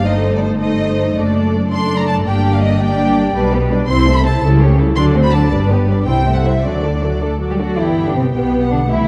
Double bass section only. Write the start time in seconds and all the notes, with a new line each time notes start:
Already playing: G1
1.17 F#1
2.27 G1
3.35 B1
3.89 C2
4.43 C#2
4.97 D2
5.52 G1
6.08 C2
6.65 D2
7.79 G1
8.35 B1
8.90 C2